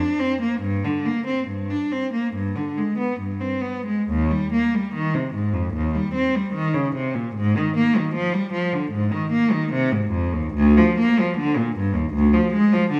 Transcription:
Already playing: D4
0.19 C4
0.41 A#3
0.61 G2
0.84 D3
1.05 A#3
1.27 C4
1.48 G2
1.70 D4
1.92 C4
2.13 A#3
2.34 G2
2.55 D3
2.77 G#3
2.98 B3
3.20 G2
3.40 C4
3.61 B3
3.86 G#3
4.09 D#2
4.31 G3
4.53 A#3
4.75 G3
4.94 D#3
5.14 C3
5.34 G#2
5.53 F2
5.74 D#2
5.95 G3
6.14 C4
6.35 G3
6.53 D#3
6.73 C#3
6.95 C3
7.15 A#2
7.35 G#2
7.57 D#3
7.77 A#3
7.97 D#3
8.14 F3
8.33 G3
8.53 F3
8.73 D3
8.92 G#2
9.12 D#3
9.32 A#3
9.51 D#3
9.73 C3
9.92 G#2
10.11 F2
10.33 D#2
10.54 D2
10.78 F3
10.98 A#3
11.20 F3
11.37 D3
11.57 A#2
11.77 G2
11.95 D#2
12.13 D2
12.34 F3
12.53 G#3
12.73 F3
12.91 D3

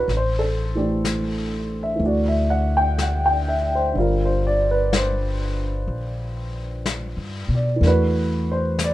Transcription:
Already playing: D4 F#4 A#4 B4 C#5
0.08 A1, brush sweep, snare
0.17 C5
0.39 A4
0.75 E3 A3 D4 G4
1.05 brush sweep, snare, hi-hat pedal
1.83 E5
1.96 D2 E3 A3
2.02 D4, brush sweep
2.06 F#4 D5
2.28 E5
2.50 F#5
2.77 G5
2.98 F#5, brush sweep, snare, hi-hat pedal
3.26 G5
3.48 E5
3.75 C5
3.93 G1 D3 G3 C5, brush sweep
3.98 F4 A#4
4.25 C5
4.47 D5
4.71 B4
4.93 C5, brush sweep, snare, hi-hat pedal
5.88 A#1, brush sweep
6.86 brush sweep, snare, hi-hat pedal
7.17 G2
7.49 B2
7.55 D5
7.76 E3
7.81 E2 A3 D4 A#4, brush sweep, snare
7.87 F#4 B4
8.52 C5
8.79 brush sweep, snare, hi-hat pedal
8.84 D5

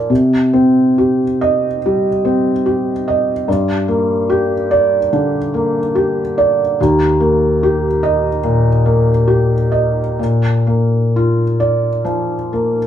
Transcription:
Already playing: F3 F4 A#4 D5
0.10 C3
0.53 C4
0.98 G4
1.41 D#5
1.86 G3
2.25 C4
2.66 G4
3.08 D#5
3.48 G2
3.88 A#3
4.30 G4
4.71 D5
5.13 D3
5.54 A#3
5.95 G4
6.38 D5
6.81 D#2
7.20 A#3
7.63 G4
8.03 D#5
8.44 A#2
8.86 A#3
9.28 G4
9.72 D#5
10.19 A#2
10.67 A#3
11.16 F4
11.60 D5
12.05 F3
12.53 A#3

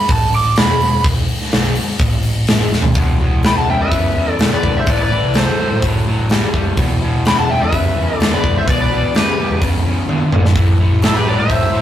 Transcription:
Already playing: B5
0.09 A1 A5, kick, open hi-hat
0.32 D6, open hi-hat
0.56 E1 B5, snare, open hi-hat
0.81 open hi-hat
1.04 E1, kick, open hi-hat
1.28 muted picked electric bass stroke, open hi-hat
1.42 snare
1.51 B1, snare, open hi-hat
1.75 open hi-hat
1.99 A1, kick, open hi-hat
2.23 open hi-hat
2.47 A1, snare, open hi-hat
2.73 E1, snare
2.82 floor tom
2.94 E1 E2 B2, kick, open hi-hat
3.20 E2 B2
3.32 E1
3.43 E2 C#3 G5 B5, snare, open hi-hat
3.57 F#5 A5
3.68 E2 C#3 E5 G5
3.80 E2 B4 E5
3.91 E2 C#3, kick, open hi-hat
4.15 E2 C#3
4.30 A4 D5
4.39 E1 E2 D3, snare, open hi-hat
4.53 B4 D5
4.63 E1 E2 D3, kick
4.77 C5 E5
4.87 A1 A2 E3 D5, kick, open hi-hat
4.92 B4
5.02 B4 D5
5.11 A2 E3
5.24 C2
5.34 A2 F#3 A4 C5, snare, open hi-hat
5.60 A2 F#3
5.71 A2
5.82 A2 F#3, kick, open hi-hat
6.07 A2 F#3
6.19 A1
6.29 A2 G3, snare, open hi-hat
6.54 A2 G3, kick
6.77 E1 E2 B2, kick, open hi-hat
7.01 E2 B2
7.14 E1
7.25 E2 C#3 G5 B5, snare, open hi-hat
7.38 F#5 A5
7.49 E2 C#3 E5 G5
7.62 E2 B4 E5
7.73 E2 C#3, kick, open hi-hat
7.96 E2 C#3
8.16 E2 A4 D5
8.20 E1 D3, snare, open hi-hat
8.34 B4 D5
8.43 E1 E2 D3, kick
8.58 C5 E5
8.67 B1 E2 B2 B4 D5, kick, open hi-hat
8.81 B4 D5
8.91 E2 B2
9.03 G1
9.15 E2 C#3 G4 B4, snare, open hi-hat
9.38 E2 C#3
9.50 E2
9.61 E2 C#3, kick, open hi-hat
9.85 F#1 E2 C#3
10.08 G1 E2 D3, high tom
10.32 A1 E2 D3, mid tom
10.45 snare
10.55 A1 A2 E3, kick, open hi-hat
10.80 A2 E3
10.91 A1
11.02 A2 F#3 E4 A4, snare, open hi-hat
11.16 G4 B4
11.25 A2 F#3 B4 D5
11.39 A2 C5 E5
11.48 A2 F#3, kick, open hi-hat
11.73 A2 F#3

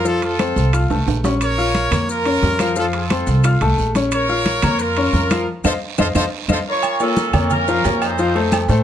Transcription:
Already playing: F2
0.05 F3 F4 A4 F5, high conga, long guiro, maracas
0.22 F4 A4, high conga, high timbale, maracas
0.39 C4 C5 C6, high conga, high timbale, short guiro, claves, maracas
0.56 C2, high conga, short guiro, maracas
0.73 F4 F5 F6, high conga, high timbale, long guiro, claves, maracas
0.90 C2 A3 A4 A5, high conga, high timbale, maracas
1.06 A#1, high conga, high timbale, short guiro, maracas
1.24 C#4 C#5 C#6, high conga, low timbale, short guiro, maracas
1.41 A#4 C#5, high conga, high timbale, long guiro, claves, maracas
1.58 F4 F5 F6, high conga, maracas
1.74 high conga, high timbale, short guiro, maracas
1.91 F2 A#3 A#4 A#5, high conga, low conga, high timbale, short guiro, claves, maracas
2.08 F4 A#4, high conga, long guiro, maracas
2.25 C#4 C#5 C#6, high conga, high timbale, maracas
2.42 F2, high conga, low timbale, short guiro, maracas
2.59 F3 F4 F5, high conga, high timbale, short guiro, claves, maracas
2.76 F3 F4 A4 F5, high conga, long guiro, maracas
2.93 F4 A4, high conga, high timbale, maracas
3.10 C4 C5 C6, high conga, high timbale, short guiro, claves, maracas
3.27 C2, high conga, short guiro, maracas
3.44 F4 F5 F6, high conga, high timbale, long guiro, claves, maracas
3.61 C2 A3 A4 A5, high conga, high timbale, maracas
3.78 A#1, high conga, short guiro, maracas
3.95 C#4 C#5 C#6, high conga, high timbale, short guiro, maracas
4.12 A#4 C#5, high conga, high timbale, long guiro, claves, maracas
4.29 F4 F5 F6, high conga, maracas
4.46 high conga, high timbale, short guiro, maracas
4.62 F2 A#3 A#4 A#5, high conga, low conga, high timbale, short guiro, claves, maracas
4.79 F4 A#4, high conga, long guiro, maracas
4.96 C#4 C#5 C#6, high conga, high timbale, maracas
5.13 F2, high conga, short guiro, maracas
5.30 F3 F4 F5, high conga, high timbale, short guiro, claves, maracas
5.64 F2 F4 A4 C5 D#5 F5, high conga, high timbale, long guiro, claves, maracas
5.98 F2 F4 A4 C5 D#5 F5, high conga, high timbale, long guiro, claves, maracas
6.15 F2 F4 A4 C5 D#5 F5, high conga, high timbale, long guiro, claves, maracas
6.48 F2 F4 A4 C5 D#5 F5, high conga, high timbale, long guiro, claves, maracas
6.68 F4 A#4 C#5
6.83 high conga, low agogo, long guiro, claves, maracas
7.00 A#3 C#4 F4 A4 C#5, high conga, low agogo, maracas
7.17 high conga, low timbale, short guiro, maracas
7.33 F2 A#3 A#4 C#5, high conga, low conga, low agogo, short guiro, claves, maracas
7.50 C#4 F4 A#4, high conga, low conga, low agogo, long guiro, maracas
7.68 F3 F4 F5, high conga, maracas
7.84 F2 A#3 A#4 C#5, high conga, low timbale, low agogo, short guiro, maracas
8.02 D#4 A4 C5, low agogo, short guiro, claves, maracas
8.18 F3 F4 F5, high conga, long guiro, maracas
8.35 A3 A4 C5, high conga, low agogo
8.52 high conga, low timbale, low agogo, short guiro, claves, maracas
8.68 A2 A3 A4 C5, short guiro, maracas

